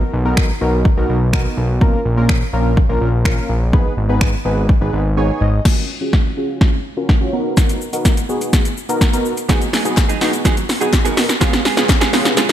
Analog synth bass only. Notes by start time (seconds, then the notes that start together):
0.13 B1
0.61 B1
0.97 B1
1.09 B1
1.57 B1
2.05 A#1
2.53 A#1
2.89 A#1
3.01 A#1
3.49 A#1
3.97 G#1
4.45 G#1
4.81 G#1
4.93 G#1
5.41 G#1